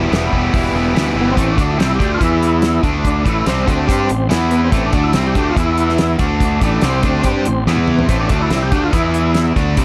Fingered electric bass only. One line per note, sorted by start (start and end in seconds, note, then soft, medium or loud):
0.12 0.30 E1 medium
0.32 0.51 E1 medium
0.54 0.72 E1 medium
0.73 0.92 E1 medium
0.94 1.13 D2 medium
1.15 1.34 G1 medium
1.38 1.57 A1 medium
1.58 1.77 D2 medium
1.78 1.98 C2 medium
2.00 2.19 D2 medium
2.21 2.80 E2 medium
2.83 3.23 D2 medium
3.26 3.45 A1 medium
3.46 3.66 C2 medium
3.67 3.87 D2 medium
3.89 4.08 G2 medium
4.11 4.30 A1 medium
4.31 4.70 E2 medium
4.72 4.92 A1 medium
4.93 5.13 D2 medium
5.14 5.34 C2 medium
5.35 5.55 D2 medium
5.56 6.16 E2 medium
6.20 6.59 D2 loud
6.61 6.81 A1 medium
6.82 7.02 C2 medium
7.03 7.23 D2 medium
7.24 7.44 G2 medium
7.47 7.66 A1 medium
7.66 8.06 E2 medium
8.09 8.29 A1 medium
8.30 8.50 D2 medium
8.50 8.70 C2 medium
8.72 8.92 D2 medium
8.93 9.53 E2 medium
9.56 9.76 D2 medium
9.77 9.85 C2 medium